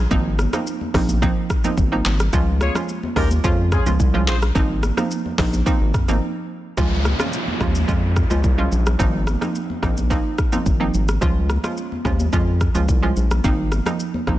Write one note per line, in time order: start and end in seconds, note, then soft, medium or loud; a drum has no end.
0.11 0.47 G#1 loud
0.11 0.29 F3 loud
0.11 0.29 A#3 medium
0.11 0.29 C4 medium
0.11 0.29 D#4 loud
0.11 kick loud
0.11 low conga medium
0.11 shaker medium
0.39 cross-stick medium
0.39 high conga medium
0.39 shaker medium
0.53 0.70 F3 medium
0.53 0.70 A#3 medium
0.53 0.70 C4 medium
0.53 0.70 D#4 medium
0.53 cross-stick loud
0.53 high conga medium
0.53 shaker medium
0.67 shaker medium
0.81 high conga medium
0.94 1.30 A#1 loud
0.94 1.12 F3 medium
0.94 1.12 A#3 medium
0.94 1.12 C4 medium
0.94 1.12 D#4 medium
0.94 kick medium
0.94 cross-stick loud
0.94 open hi-hat medium
0.94 shaker soft
1.09 high conga medium
1.09 shaker medium
1.22 1.40 F3 loud
1.22 1.40 A#3 medium
1.22 1.40 C4 medium
1.22 1.40 D#4 loud
1.22 kick loud
1.22 shaker medium
1.50 kick medium
1.50 cross-stick loud
1.50 shaker medium
1.64 1.81 F3 medium
1.64 1.81 A#3 medium
1.64 1.81 C4 medium
1.64 1.81 D#4 medium
1.64 high conga medium
1.64 shaker medium
1.77 2.01 G#1 loud
1.77 kick loud
1.77 low conga medium
1.77 shaker medium
1.92 2.09 F3 medium
1.92 2.09 A#3 medium
1.92 2.09 C4 medium
1.92 2.09 D#4 medium
2.05 2.29 G#1 medium
2.05 clap loud
2.05 low conga medium
2.05 shaker medium
2.20 cross-stick medium
2.20 shaker medium
2.33 2.69 C#2 loud
2.33 2.51 F3 medium
2.33 2.51 G#3 medium
2.33 2.51 C#4 medium
2.33 2.51 F4 loud
2.33 kick loud
2.33 low conga medium
2.33 shaker medium
2.61 2.73 F4 medium
2.61 2.73 G#4 medium
2.61 2.73 C#5 medium
2.61 cross-stick loud
2.61 high conga medium
2.61 shaker medium
2.75 2.92 F3 medium
2.75 2.92 G#3 medium
2.75 2.92 C#4 medium
2.75 2.93 F4 medium
2.75 cross-stick loud
2.75 high conga medium
2.75 shaker medium
2.89 shaker medium
3.03 high conga medium
3.16 3.40 D#2 loud
3.16 3.34 F3 medium
3.16 3.34 G#3 medium
3.16 3.34 C#4 medium
3.16 3.28 D#4 medium
3.16 3.34 F4 medium
3.16 3.28 G4 medium
3.16 3.28 A#4 medium
3.16 kick medium
3.16 cross-stick medium
3.16 open hi-hat medium
3.16 shaker soft
3.31 high conga medium
3.31 shaker medium
3.44 3.80 F2 loud
3.44 3.62 F3 medium
3.44 3.62 G#3 medium
3.44 3.62 C#4 medium
3.44 3.62 F4 loud
3.44 kick loud
3.44 shaker medium
3.72 3.84 C#4 medium
3.72 3.84 F4 medium
3.72 3.84 G#4 medium
3.72 kick medium
3.72 cross-stick loud
3.72 shaker medium
3.86 3.98 C#2 medium
3.86 4.03 F3 medium
3.86 4.03 G#3 medium
3.86 4.03 C#4 medium
3.86 4.04 F4 medium
3.86 high conga medium
3.86 shaker medium
4.00 4.29 C2 loud
4.00 kick loud
4.00 low conga medium
4.00 shaker medium
4.14 4.31 F3 medium
4.14 4.31 G#3 medium
4.14 4.31 C#4 medium
4.14 4.31 F4 medium
4.27 4.51 A#1 loud
4.27 4.36 F4 medium
4.27 4.36 G#4 medium
4.27 4.36 C5 loud
4.27 clap loud
4.27 low conga medium
4.27 shaker medium
4.42 cross-stick loud
4.42 shaker medium
4.55 4.91 G#1 loud
4.55 4.73 F3 loud
4.55 4.73 A#3 medium
4.55 4.73 C4 medium
4.55 4.73 D#4 loud
4.55 kick loud
4.55 low conga medium
4.55 shaker medium
4.83 cross-stick loud
4.83 high conga medium
4.83 shaker medium
4.97 5.14 F3 medium
4.97 5.14 A#3 medium
4.97 5.14 C4 medium
4.97 5.15 D#4 medium
4.97 cross-stick medium
4.97 high conga medium
4.97 shaker medium
5.11 shaker medium
5.26 high conga medium
5.38 5.62 A#1 loud
5.38 5.56 F3 medium
5.38 5.56 A#3 medium
5.38 5.56 C4 medium
5.38 5.56 D#4 medium
5.38 kick medium
5.38 cross-stick loud
5.38 clap loud
5.38 open hi-hat medium
5.38 shaker soft
5.53 high conga medium
5.53 shaker medium
5.66 5.84 F3 medium
5.66 5.84 A#3 medium
5.66 5.84 C4 medium
5.66 5.84 D#4 loud
5.66 kick loud
5.66 shaker medium
5.81 5.92 G#1 loud
5.94 kick medium
5.94 cross-stick medium
5.94 mid tom medium
5.94 shaker medium
6.08 6.20 G#1 loud
6.08 6.22 F3 medium
6.08 6.22 A#3 medium
6.08 6.22 C4 medium
6.08 6.22 D#4 medium
6.08 high conga medium
6.08 shaker medium
6.77 7.14 C#2 loud
6.77 6.95 F3 medium
6.77 6.95 G#3 medium
6.77 6.95 C#4 medium
6.77 6.96 F4 loud
6.77 kick loud
6.77 downlifter medium
6.77 low conga medium
6.77 shaker medium
7.05 cross-stick medium
7.05 high conga medium
7.05 shaker medium
7.19 7.37 F3 medium
7.19 7.37 G#3 medium
7.19 7.37 C#4 medium
7.19 7.37 F4 medium
7.19 cross-stick loud
7.19 high conga medium
7.19 shaker medium
7.33 shaker medium
7.48 high conga medium
7.60 7.84 D#2 loud
7.60 7.78 F3 medium
7.60 7.79 G#3 medium
7.60 7.79 C#4 medium
7.60 7.79 F4 medium
7.60 kick medium
7.60 cross-stick medium
7.60 shaker soft
7.75 high conga medium
7.75 shaker medium
7.88 8.25 F2 loud
7.88 8.06 F3 medium
7.88 8.06 G#3 medium
7.88 8.06 C#4 medium
7.88 8.06 F4 loud
7.88 kick medium
7.88 shaker medium
8.16 kick medium
8.16 cross-stick medium
8.16 shaker medium
8.30 8.42 C#2 medium
8.30 8.47 F3 medium
8.30 8.48 G#3 medium
8.30 8.48 C#4 medium
8.30 8.48 F4 medium
8.30 high conga medium
8.30 shaker medium
8.44 8.68 C2 loud
8.44 kick loud
8.44 low conga medium
8.44 shaker medium
8.58 8.75 F3 medium
8.58 8.75 G#3 medium
8.58 8.75 C#4 medium
8.58 8.76 F4 medium
8.72 8.96 A#1 loud
8.72 low conga medium
8.72 shaker soft
8.86 cross-stick medium
8.86 high conga medium
8.86 shaker medium
8.99 9.36 G#1 loud
8.99 9.17 F3 medium
8.99 9.17 A#3 medium
8.99 9.17 C4 medium
8.99 9.17 D#4 loud
8.99 kick loud
8.99 low conga medium
8.99 shaker medium
9.27 cross-stick loud
9.27 high conga medium
9.27 shaker medium
9.41 9.59 F3 medium
9.41 9.59 A#3 medium
9.41 9.59 C4 medium
9.41 9.59 D#4 medium
9.41 cross-stick medium
9.41 high conga medium
9.41 shaker medium
9.55 shaker medium
9.70 high conga medium
9.83 10.19 A#1 loud
9.83 10.01 F3 medium
9.83 10.01 A#3 medium
9.83 10.01 C4 medium
9.83 10.01 D#4 medium
9.83 kick medium
9.83 cross-stick medium
9.83 shaker soft
9.97 high conga medium
9.97 shaker medium
10.10 10.28 F3 medium
10.10 10.29 A#3 medium
10.10 10.29 C4 medium
10.10 10.29 D#4 loud
10.10 kick loud
10.10 shaker medium
10.38 kick medium
10.38 cross-stick medium
10.38 shaker medium
10.52 10.70 F3 medium
10.52 10.70 A#3 medium
10.52 10.70 C4 medium
10.52 10.70 D#4 medium
10.52 high conga medium
10.52 shaker medium
10.66 10.90 G#1 medium
10.66 kick loud
10.66 low conga medium
10.66 shaker medium
10.80 10.97 F3 medium
10.80 10.97 A#3 medium
10.80 10.98 C4 medium
10.80 10.98 D#4 medium
10.94 11.18 G#1 medium
10.94 low conga medium
10.94 shaker medium
11.08 cross-stick medium
11.08 high conga medium
11.08 shaker medium
11.21 11.58 C#2 loud
11.21 11.39 F3 medium
11.21 11.40 G#3 medium
11.21 11.40 C#4 medium
11.21 11.40 F4 loud
11.21 kick loud
11.21 low conga medium
11.21 shaker medium
11.50 cross-stick medium
11.50 high conga medium
11.50 shaker medium
11.64 11.81 F3 medium
11.64 11.81 G#3 medium
11.64 11.81 C#4 medium
11.64 11.81 F4 medium
11.64 cross-stick loud
11.64 high conga medium
11.64 shaker medium
11.77 shaker medium
11.92 high conga medium
12.05 12.29 D#2 loud
12.05 12.23 F3 medium
12.05 12.23 G#3 medium
12.05 12.23 C#4 medium
12.05 12.23 F4 medium
12.05 kick medium
12.05 cross-stick medium
12.05 shaker soft
12.20 high conga medium
12.20 shaker medium
12.33 12.69 F2 loud
12.33 12.51 F3 medium
12.33 12.51 G#3 medium
12.33 12.51 C#4 medium
12.33 12.51 F4 loud
12.33 kick loud
12.33 shaker medium
12.61 kick medium
12.61 cross-stick medium
12.61 shaker medium
12.75 12.87 C#2 loud
12.75 12.92 F3 medium
12.75 12.92 G#3 medium
12.75 12.92 C#4 medium
12.75 12.92 F4 medium
12.75 high conga medium
12.75 shaker medium
12.89 13.12 C2 loud
12.89 kick loud
12.89 low conga medium
12.89 shaker medium
13.03 13.20 F3 medium
13.03 13.20 G#3 medium
13.03 13.20 C#4 medium
13.03 13.20 F4 medium
13.16 13.40 A#1 medium
13.16 low conga medium
13.16 shaker soft
13.30 cross-stick medium
13.30 high conga medium
13.30 shaker medium
13.44 13.80 G#1 loud
13.44 13.62 F3 medium
13.44 13.62 A#3 medium
13.44 13.62 C4 medium
13.44 13.62 D#4 loud
13.44 kick loud
13.44 low conga medium
13.44 shaker medium
13.72 cross-stick medium
13.72 high conga medium
13.72 shaker medium
13.86 14.03 F3 medium
13.86 14.03 A#3 medium
13.86 14.03 C4 medium
13.86 14.03 D#4 medium
13.86 cross-stick medium
13.86 high conga medium
13.86 shaker medium
14.00 shaker medium
14.14 high conga medium
14.27 14.39 A#1 medium
14.27 14.39 F3 medium
14.27 14.39 A#3 medium
14.27 14.39 C4 medium
14.27 14.39 D#4 medium
14.27 kick medium
14.27 cross-stick medium
14.27 shaker soft